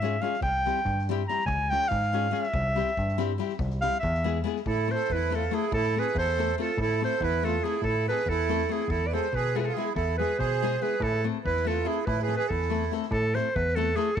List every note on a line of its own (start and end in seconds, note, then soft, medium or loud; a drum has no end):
0.00 0.17 G#2 medium
0.00 0.14 G#3 medium
0.00 0.15 C#4 medium
0.00 0.15 F4 medium
0.00 0.15 G#4 medium
0.00 0.23 E5 medium
0.00 snare soft
0.21 0.34 G#3 medium
0.21 0.35 C#4 medium
0.21 0.35 F4 medium
0.21 0.36 G#4 medium
0.21 0.42 F5 medium
0.21 snare soft
0.34 snare soft
0.42 0.68 C2 medium
0.42 1.04 G5 medium
0.42 kick loud
0.66 0.78 G3 medium
0.66 0.79 C4 medium
0.66 0.79 E4 medium
0.66 0.79 G4 medium
0.66 snare soft
0.76 snare soft
0.85 1.23 G2 medium
0.85 kick medium
0.98 snare soft
1.09 1.21 G3 medium
1.09 1.21 C4 medium
1.09 1.22 E4 medium
1.09 1.22 G4 medium
1.09 snare soft
1.28 1.41 G3 medium
1.28 1.41 C4 medium
1.28 1.42 E4 medium
1.28 1.42 G4 medium
1.28 1.46 A#5 medium
1.28 snare soft
1.40 snare soft
1.46 1.73 C#2 medium
1.46 1.71 G#5 medium
1.46 kick loud
1.70 1.84 G#3 medium
1.70 1.84 C#4 medium
1.70 1.85 F4 medium
1.70 1.85 G#4 medium
1.70 1.90 G5 loud
1.70 snare soft
1.82 snare soft
1.88 2.29 G#2 medium
1.88 2.33 F5 medium
1.88 kick medium
2.02 snare soft
2.13 2.26 G#3 medium
2.13 2.26 C#4 medium
2.13 2.26 F4 medium
2.13 2.27 G#4 medium
2.13 snare soft
2.31 2.45 G#3 medium
2.31 2.45 C#4 medium
2.31 2.46 F4 medium
2.31 2.46 G#4 medium
2.31 2.44 F5 medium
2.31 snare soft
2.43 3.39 E5 medium
2.43 snare soft
2.54 2.81 C2 loud
2.54 kick loud
2.75 2.89 G3 medium
2.75 2.89 C4 soft
2.75 2.90 E4 medium
2.75 2.90 G4 medium
2.75 snare soft
2.87 snare soft
2.97 3.35 G2 medium
2.97 kick medium
3.08 snare soft
3.18 3.31 G3 medium
3.18 3.31 C4 medium
3.18 3.32 E4 medium
3.18 3.32 G4 medium
3.18 snare soft
3.38 3.51 G3 medium
3.38 3.52 C4 medium
3.38 3.52 E4 medium
3.38 3.52 G4 medium
3.38 snare soft
3.49 snare soft
3.59 3.87 C2 medium
3.59 kick loud
3.70 snare soft
3.81 3.95 G3 medium
3.81 3.96 C4 medium
3.81 3.96 E4 medium
3.81 3.96 G4 medium
3.81 3.99 F5 loud
3.81 snare soft
3.93 snare soft
4.00 4.40 E5 medium
4.00 kick medium
4.04 4.41 E2 loud
4.14 snare soft
4.24 4.37 G#3 medium
4.24 4.38 B3 medium
4.24 4.38 E4 medium
4.24 4.38 G#4 medium
4.24 snare soft
4.44 4.57 G#3 medium
4.44 4.58 B3 medium
4.44 4.58 E4 medium
4.44 4.59 G#4 medium
4.44 snare soft
4.56 snare soft
4.66 4.93 A2 medium
4.66 4.88 E4 medium
4.66 4.93 A4 medium
4.66 kick medium
4.87 5.01 A3 medium
4.87 5.01 C4 soft
4.87 5.01 E4 medium
4.87 5.02 A4 medium
4.87 5.14 C5 loud
4.87 snare soft
4.94 5.12 A4 medium
5.10 5.47 E2 medium
5.10 5.33 E4 medium
5.10 5.37 B4 medium
5.10 kick medium
5.21 snare soft
5.30 5.43 A3 medium
5.30 5.44 C4 medium
5.30 5.44 E4 medium
5.30 5.44 A4 medium
5.30 snare soft
5.35 5.53 F4 medium
5.35 5.56 A4 medium
5.51 5.64 A3 medium
5.51 5.64 C4 medium
5.51 5.64 E4 medium
5.51 5.73 E4 medium
5.51 5.73 G#4 medium
5.51 5.65 A4 medium
5.51 snare soft
5.72 5.98 A2 medium
5.72 5.95 E4 medium
5.72 6.01 A4 loud
5.72 kick loud
5.96 6.08 A3 medium
5.96 6.08 C4 medium
5.96 6.09 E4 medium
5.96 6.17 G#4 medium
5.96 6.09 A4 medium
5.96 6.17 B4 loud
5.96 snare soft
6.15 6.52 E2 medium
6.15 6.56 A4 medium
6.15 6.56 C5 loud
6.15 kick medium
6.28 snare soft
6.38 6.50 A3 medium
6.38 6.50 C4 medium
6.38 6.50 E4 medium
6.38 6.51 A4 medium
6.38 snare soft
6.58 6.70 A3 medium
6.58 6.70 C4 medium
6.58 6.71 E4 medium
6.58 6.77 F4 medium
6.58 6.71 A4 medium
6.58 6.78 A4 medium
6.58 snare soft
6.77 7.03 A2 medium
6.77 kick medium
6.81 7.01 E4 medium
6.81 7.01 A4 medium
7.01 7.14 A3 medium
7.01 7.14 C4 medium
7.01 7.14 E4 medium
7.01 7.15 A4 medium
7.01 7.21 A4 medium
7.01 7.25 C5 medium
7.01 snare soft
7.20 7.58 E2 medium
7.20 7.43 E4 medium
7.20 7.46 B4 medium
7.20 kick medium
7.34 snare soft
7.43 7.56 A3 medium
7.43 7.56 C4 medium
7.43 7.56 E4 medium
7.43 7.64 F4 medium
7.43 7.65 A4 medium
7.43 7.57 A4 medium
7.43 snare soft
7.64 7.76 A3 medium
7.64 7.76 C4 medium
7.64 7.77 E4 medium
7.64 7.85 E4 medium
7.64 7.83 G#4 medium
7.64 7.77 A4 medium
7.64 snare soft
7.82 8.09 A2 medium
7.82 8.05 A4 medium
7.82 kick medium
7.86 8.07 E4 medium
8.07 8.20 A3 soft
8.07 8.20 C4 medium
8.07 8.20 E4 soft
8.07 8.27 G#4 medium
8.07 8.21 A4 medium
8.07 8.31 B4 medium
8.07 snare soft
8.19 snare soft
8.26 8.63 E2 medium
8.26 8.70 E4 medium
8.26 8.74 A4 medium
8.26 kick medium
8.39 snare soft
8.49 8.62 A3 medium
8.49 8.62 C4 medium
8.49 8.62 E4 medium
8.49 8.62 A4 medium
8.49 snare soft
8.60 snare soft
8.69 8.82 A3 medium
8.69 8.82 C4 medium
8.69 8.83 E4 medium
8.69 8.88 E4 medium
8.69 8.92 G#4 medium
8.69 8.83 A4 medium
8.69 snare soft
8.80 snare soft
8.88 9.15 E2 medium
8.88 9.07 E4 medium
8.88 9.08 A4 medium
8.88 kick loud
9.06 9.12 B4 medium
9.06 9.15 D5 medium
9.13 9.26 G#3 medium
9.13 9.26 B3 medium
9.13 9.26 E4 medium
9.13 9.27 G#4 medium
9.13 9.33 A4 medium
9.13 9.36 C5 medium
9.13 snare soft
9.33 9.70 B2 medium
9.33 9.56 G#4 medium
9.33 9.58 B4 medium
9.33 kick medium
9.46 snare soft
9.55 9.68 G#3 medium
9.55 9.68 B3 medium
9.55 9.68 E4 medium
9.55 9.60 F4 medium
9.55 9.68 G#4 medium
9.55 9.62 A4 medium
9.55 snare soft
9.60 9.66 G#4 medium
9.60 9.67 B4 medium
9.65 9.76 F4 medium
9.65 9.76 A4 medium
9.74 9.88 G#3 medium
9.74 9.89 B3 medium
9.74 9.93 E4 medium
9.74 9.89 E4 medium
9.74 9.95 G#4 medium
9.74 snare soft
9.78 9.89 G#4 medium
9.95 10.22 E2 medium
9.95 10.17 E4 medium
9.95 10.17 A4 medium
9.95 kick medium
10.18 10.32 G#3 medium
10.18 10.33 B3 soft
10.18 10.32 E4 soft
10.18 10.37 G#4 medium
10.18 10.33 G#4 medium
10.18 10.41 B4 medium
10.18 snare soft
10.39 10.76 B2 medium
10.39 10.80 G#4 medium
10.39 10.84 C5 medium
10.39 kick medium
10.52 snare soft
10.62 10.74 G#3 medium
10.62 10.75 B3 medium
10.62 10.75 E4 medium
10.62 10.75 G#4 medium
10.62 snare soft
10.81 10.94 G#3 medium
10.81 10.94 B3 medium
10.81 10.94 E4 medium
10.81 11.01 G#4 medium
10.81 10.94 G#4 medium
10.81 11.04 B4 medium
10.81 snare soft
11.00 11.27 A2 medium
11.00 11.25 E4 medium
11.00 11.25 A4 medium
11.00 kick medium
11.24 11.37 A3 medium
11.24 11.37 C4 medium
11.24 11.37 E4 medium
11.24 11.38 A4 medium
11.44 11.82 E2 medium
11.44 11.65 E4 medium
11.44 11.69 B4 medium
11.44 kick medium
11.57 snare soft
11.65 11.78 A3 medium
11.65 11.79 C4 medium
11.65 11.79 E4 medium
11.65 11.87 F4 medium
11.65 11.79 A4 medium
11.65 11.89 A4 medium
11.65 snare soft
11.85 11.98 A3 medium
11.85 11.98 C4 medium
11.85 11.98 E4 medium
11.85 12.05 E4 medium
11.85 12.07 G#4 medium
11.85 11.99 A4 medium
12.06 12.33 A2 medium
12.06 12.22 E4 medium
12.06 12.21 B4 medium
12.06 kick loud
12.19 12.35 G#4 medium
12.19 12.35 B4 medium
12.19 snare soft
12.28 12.41 A3 medium
12.28 12.42 C4 soft
12.28 12.42 E4 medium
12.28 12.42 A4 medium
12.28 snare soft
12.36 12.50 G#4 medium
12.36 12.48 B4 loud
12.41 snare soft
12.48 12.87 E2 medium
12.48 12.94 E4 medium
12.48 12.93 A4 medium
12.48 kick medium
12.62 snare soft
12.70 12.83 A3 medium
12.70 12.84 C4 medium
12.70 12.84 E4 medium
12.70 12.84 A4 medium
12.70 snare soft
12.82 snare soft
12.91 13.04 A3 medium
12.91 13.04 C4 medium
12.91 13.05 E4 medium
12.91 13.05 A4 medium
12.91 snare soft
13.02 snare soft
13.11 13.37 A2 loud
13.11 13.36 A4 loud
13.11 kick medium
13.34 13.47 A3 medium
13.34 13.48 C4 medium
13.34 13.48 E4 medium
13.34 13.49 A4 medium
13.34 13.57 C5 medium
13.34 snare soft
13.56 13.93 E2 medium
13.56 13.77 B4 loud
13.56 kick medium
13.68 snare soft
13.75 13.89 A3 medium
13.75 13.89 C4 medium
13.75 13.90 E4 medium
13.75 13.97 A4 loud
13.75 13.90 A4 medium
13.80 snare soft
13.96 14.09 A3 medium
13.96 14.09 C4 medium
13.96 14.09 E4 medium
13.96 14.18 G#4 loud
13.96 14.10 A4 medium
13.96 snare soft
14.16 14.20 A4 loud